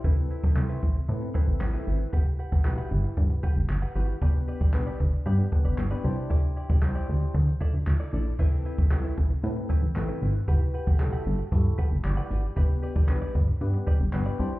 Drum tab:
CC |----------------|----------------|----------------|----------------|
HH |----------------|----------------|----------------|----------------|
CP |----x-------x---|----x-------x---|----x-------x---|----x-------x---|
SD |----o-------o---|----o-------o---|----o-------o---|----o-------o---|
BD |o--o--o---o-----|o--o----o-o-----|o--o--o---o-----|o--o----o-o-----|

CC |x---------------|----------------|----------------|
HH |--x-x-x-x-x-x-x-|x-x-x-x-x-x-x-x-|x-x-x-x-x-x-x-x-|
CP |----x-------x---|----x-------x---|----x-------x---|
SD |----o-------o---|----o-------o---|----o-------o---|
BD |o--o--o---o-----|o--o----o-o-----|o--o--o---o-----|